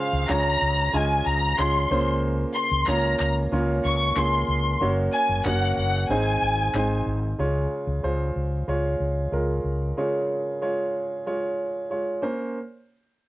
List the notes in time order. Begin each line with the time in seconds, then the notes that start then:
Already playing: C#3 G#3 C#4 F4 C5 C#5 F5
0.13 C#2
0.29 C#2 G#3 C#4 F4 C#5 A#5, clap
0.62 C#2
0.93 C#2 G#3 C#4 F4 D#5 G#5
1.26 C#2 A#5
1.58 C#2 G#3 C#4 F4 C#5 C6, clap
1.91 C#2 C#3 A#3 C#4 F4 C5
2.55 C6
2.71 C#2
2.87 C#2 A#3 C#4 F4 C#5 A#5, clap
3.19 C#2 A#5, clap
3.52 C#2 A#3 C#4 F4 C#5
3.85 C#2 C#6
4.16 C#2 A#3 C#4 F4 G#4 C6, clap
4.48 C#2 C6
4.81 F#1 A#3 C#4 F#4 C#5
5.13 G#5
5.29 F#1
5.45 F#1 A#3 C#4 F#4 C#5 F#5, clap
5.77 F#1 F#5
6.09 G#1 G#2 G#3 C4 D#4 C5 G#5
6.42 G#1
6.74 G#1 G#3 C4 D#4 C5, clap
7.06 G#1
7.38 C#2 C#3 G#3 F4 C#5
7.87 C#2
8.03 C#2 G#3 F4 C5
8.36 C#2
8.68 C#2 G#3 F4 C#5
9.00 C#2
9.32 C#2 G#3 F4 A#4
9.64 C#2
9.97 C#3 G#3 F4 C#5
10.61 G#3 F4 C#5
11.26 G#3 F4 C#5
11.90 G#3 F4 C#5
12.22 A#3 C#4 C5